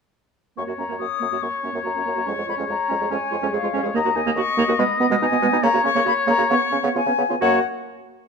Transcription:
0.57 F#2 A#3 C#5 C#6
0.67 F#2 A#3 F#4
0.78 F#2 A#3 C#4 A#5
0.89 F#2 A#3
0.99 F#2 A#3 F#4 D#6
1.20 F#2 A#3
1.31 F#2 A#3 F#4
1.42 F#2 A#3 C#6
1.63 F#2 A#3 C#4
1.72 F#2 A#3
1.83 F#2 A#3 F#4 A#5
1.95 F#2 A#3 C#4
2.04 F#2 A#3
2.15 F#2 A#3 F#4
2.26 F2 G#3 C#4 C#6
2.35 F2 G#3 G#4
2.47 F2 G#3 F4 B5
2.57 F2 G#3 C#4
2.67 F2 G#3 G#4 A#5
2.88 F2 G#3 C#4
3.01 F2 G#3 G#4
3.11 F2 G#3 C#4 G#5
3.31 F2 G#3 F4
3.42 F2 G#3 C#4
3.52 F2 G#3 G#4 F5
3.62 F2 G#3 F4
3.73 F2 G#3 C#4
3.83 F2 G#3 G#4
3.94 D#2 A#3 D#5 A#5
4.05 D#2 A#3 F#4
4.16 D#2 A#3 D#4 G#5
4.26 D#2 A#3
4.36 D#2 A#3 F#4 C#6
4.57 D#2 A#3
4.68 D#2 A#3 F#4
4.79 B2 G#3 B3 B5
5.00 B2 B3 B5
5.10 B2 G#3 B3
5.21 B2 B3 D#4 G#5
5.31 B2 B3
5.42 B2 G#3 B3
5.53 B2 B3 D#4
5.63 C#3 A#3 C#5 A#5
5.74 C#3 A#3 F#4
5.84 C#3 A#3 C#4 C#6
5.95 C#3 A#3
6.06 C#3 A#3 F#4 B5
6.27 C#3 A#3 A#5
6.38 C#3 A#3 F#4
6.50 C#3 B3 C#6
6.72 C#3 B3 C#4
6.83 C#3 B3
6.95 C#3 B3 F4 G#5
7.06 C#3 B3 C#4
7.18 C#3 B3
7.30 C#3 B3 F4
7.41 F#2 A#3 F#4 C#5 F#5

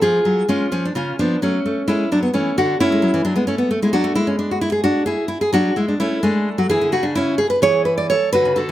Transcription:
0.01 F3 F4 G#4
0.25 F#3
0.48 G#3 C#4 F4
0.72 F3 C#4
0.85 D4
0.95 C#3 C#4 F4
1.19 F3 B3 D4
1.42 F#3 A3 C#4
1.66 A3
1.87 G#3 C#4 E4
2.12 F#3 D4
2.23 B3
2.34 E3 A3 C#4
2.58 D3 D4 F#4
2.80 A3 C#4 E4
2.92 G#3
3.02 F#3
3.14 E3
3.25 F#3 D4
3.36 G#3 B3
3.47 A3 C#4
3.58 B3
3.71 A3
3.82 G#3 E4
3.93 F#3 D4 F#4
4.04 A3
4.15 G#3 E4
4.27 C#4
4.39 D4
4.51 F#4
4.61 E4
4.72 G#4
4.84 D4 F#4
5.06 E4 G#4
5.28 E4
5.41 G#4
5.53 F#3 D4 F#4
5.76 G#3 E4
5.88 D4
6.00 A3 C#4 E4
6.23 G#3 A3 D4
6.58 F#3 F#4
6.69 E3 E4 G#4
6.81 D3
6.92 C#3 F#4
7.03 D4
7.15 C#4 E4
7.38 G#4
7.50 B4
7.62 E3 G#4 C#5
7.85 B4
7.98 D5
8.10 A4 C#5
8.33 D3 F#4 B4
8.45 C#3
8.56 D3 F#4 A4

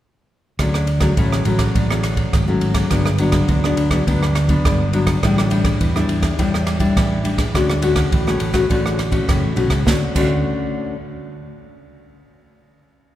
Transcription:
0.59 D2 D3 F#3 A3 C#4, kick, cross-stick, ride
0.74 cross-stick
0.87 ride
1.00 F#3 A3 C#4, kick, cross-stick, ride
1.17 A1 A2 F#3 A3 C#4, kick, ride
1.32 cross-stick
1.45 A1 F#3 A3 C#4, ride
1.59 kick, cross-stick, ride
1.75 A1 D3, kick, ride
1.90 F#3 A3 C#4, cross-stick
2.03 cross-stick, ride
2.17 kick, ride
2.33 G#1, kick, cross-stick, ride
2.48 F#3 A3 C#4
2.61 ride
2.75 kick, cross-stick, ride
2.91 G1 G2 F#3 B3 D4, kick, cross-stick, ride
3.06 cross-stick
3.18 F#3 B3 D4, ride
3.32 kick, cross-stick, ride
3.48 D2 D3, kick, ride
3.64 F#3 B3 D4, cross-stick
3.77 D2, ride
3.91 F#3 B3 D4, kick, cross-stick, ride
4.07 D2 G2 F#3 B3 D4, kick, ride
4.23 cross-stick
4.35 cross-stick, ride
4.49 F#3 B3 D4, kick, ride
4.65 G1 D3, kick, cross-stick, ride
4.93 F#3 B3 D4, ride
5.07 kick, cross-stick, ride
5.23 A1 A2 G3 D4 E4, kick, cross-stick, ride
5.38 cross-stick
5.50 G3 D4 E4, ride
5.64 kick, cross-stick, ride
5.80 E2 E3, kick, ride
5.96 G3 D4 E4, cross-stick
6.08 E2, ride
6.22 kick, cross-stick, ride
6.39 E2 A2 G3 D4 E4, kick, ride
6.54 cross-stick
6.67 cross-stick, ride
6.80 G3 D4 E4, kick, ride
6.96 A1 E3, kick, cross-stick, ride
7.25 G3 D4 E4, ride
7.38 kick, cross-stick, ride
7.55 D2 D3 A3 C#4 F#4, kick, cross-stick, ride
7.70 cross-stick
7.82 A3 C#4 F#4, ride
7.96 kick, cross-stick, ride
8.12 A1 A2, kick, ride
8.27 A3 C#4 F#4, cross-stick
8.40 A1, ride
8.53 A3 C#4 F#4, kick, cross-stick, ride
8.70 A1 D3 A3 C#4 F#4, kick, ride
8.86 cross-stick
8.99 cross-stick, ride
9.11 A3 C#4 F#4, kick, ride
9.28 F#1 A2, kick, cross-stick, ride
9.44 A1
9.56 B1 A3 C#4 F#4, ride
9.68 C#2, kick, cross-stick, ride
9.86 D2 D3 A3 C#4 F#4, kick, snare
10.15 D2 D3 A3 C#4 F#4, kick, crash

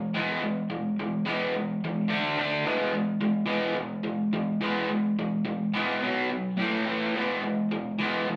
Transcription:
Already playing: E3 G#3
0.14 E3 G#3 B3
0.41 E3 G#3
0.70 E3 G#3
0.99 E3 G#3
1.25 E3 G#3 B3
1.54 E3 G#3
1.84 E3 G#3
2.08 D3 A3 D4
2.37 D3 A3 D4
2.66 E3 G#3 B3
2.93 E3 G#3
3.21 E3 G#3
3.46 E3 G#3 B3
3.75 E3 G#3
4.03 E3 G#3
4.33 E3 G#3
4.61 E3 G#3 B3
4.90 E3 G#3
5.19 E3 G#3
5.45 E3 G#3
5.74 E3 G#3 B3
6.01 B2 F#3 B3
6.30 B2 F#3
6.57 A2 E3 A3
6.86 A2 E3 A3
7.16 E3 G#3 B3
7.42 E3 G#3
7.71 E3 G#3
7.99 E3 G#3 B3
8.28 E3 G#3

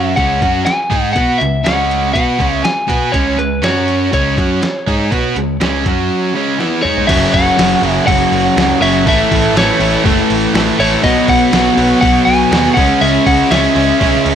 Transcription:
Already playing: F#2 F#3 C#4 F#4 F#5
0.16 C#2 C#3 G#3 C#4 F#5, kick, closed hi-hat
0.41 F#2 F#3 C#4 F#4, kick, closed hi-hat
0.66 G#5, muted distorted electric guitar stroke, muted overdriven electric guitar stroke, muted picked electric bass stroke, snare, closed hi-hat
0.90 G#2 G#3 D#4 G#4, kick, closed hi-hat
1.13 B2 B3 F#4 B4 F#5, kick, closed hi-hat
1.38 C#2 C#3 G#3 E5, closed hi-hat
1.64 C#2 C#3 G#3 C#4 F#5, snare, closed hi-hat
1.91 closed hi-hat
2.13 B2 B3 F#4 B4 F#5, kick, closed hi-hat
2.38 C#2 C#3 G#3 C#4, kick, closed hi-hat
2.63 G#5, muted distorted electric guitar stroke, muted overdriven electric guitar stroke, muted picked electric bass stroke, snare, closed hi-hat
2.87 B2 B3 F#4 B4, kick, closed hi-hat
3.12 C#2 C#3 G#3 C#4 C#5, kick, closed hi-hat
3.37 C#2 C#3 G#3 B4, closed hi-hat
3.62 F#2 F#3 C#4 F#4 C#5, snare, closed hi-hat
3.88 closed hi-hat
4.12 C#2 C#3 G#3 C#4 C#5, kick, closed hi-hat
4.36 F#2 F#3 C#4 F#4, kick, closed hi-hat
4.62 muted overdriven electric guitar stroke, muted picked electric bass stroke, muted distorted electric guitar stroke, snare, closed hi-hat
4.87 G#2 G#3 D#4 G#4, kick, closed hi-hat
5.12 B2 B3 F#4 B4, kick, closed hi-hat
5.35 C#2 C#3 G#3, closed hi-hat
5.61 C#2 C#3 G#3 C#4, snare, closed hi-hat
5.85 F#2 F#3 C#4 F#4, kick, closed hi-hat
6.34 C#3 G#3 C#4
6.59 E3 B3 E4, snare
6.83 G#3 D#4 G#4 C#5, mid tom
6.97 floor tom
7.07 F#1 F#2 C#3 F#3 C#4 G#4 E5, kick, open hi-hat, crash
7.33 F#1 F#5, kick, open hi-hat
7.56 F#1 F#2 C#3 F#3, snare, open hi-hat
7.80 F#1 F#2 C#3 F#3, open hi-hat
7.90 E5
8.06 F#1 F#2 C#3 F#3 F#5, kick, open hi-hat
8.32 F#1, open hi-hat
8.56 C#2 F#2 C#3 F#3, snare, open hi-hat
8.81 F#1 F#2 C#3 F#3 E5, open hi-hat
9.06 A1 A2 E3 A3 E4 B4 E5, kick, open hi-hat
9.31 A1, kick, open hi-hat
9.54 A1 A2 E3 A3, snare, open hi-hat
9.58 C#5
9.80 A1 A2 E3 A3, open hi-hat
10.04 F#1 A2 E3 A3, kick, open hi-hat
10.30 A1, open hi-hat
10.54 A1 A2 E3 A3, snare, open hi-hat
10.78 A1 A2 E3 A3 C#5, open hi-hat
11.03 B1 B2 F#3 B3 F#4 C#5 D#5, kick, open hi-hat
11.28 B1 F#5, kick, open hi-hat
11.52 B1 B2 F#3 B3, snare, open hi-hat
11.76 B1 B2 F#3 B3, open hi-hat
12.01 B1 B2 F#3 B3 F#5, kick, open hi-hat
12.25 B1 G#5, open hi-hat
12.52 D#2 B2 F#3 B3, snare, open hi-hat
12.74 C#2 C#3 G#3 C#4 F#5, kick, open hi-hat
12.78 E5
13.01 C#2 C#3 G#3 C#4 E5, open hi-hat
13.26 C#2 F#5, kick, open hi-hat
13.51 C#2 C#3 G#3 C#4 E5, snare, open hi-hat
13.75 C#2 C#3 G#3 C#4, open hi-hat
14.00 B1 C#3 G#3 C#4, kick, open hi-hat
14.25 C#2, open hi-hat

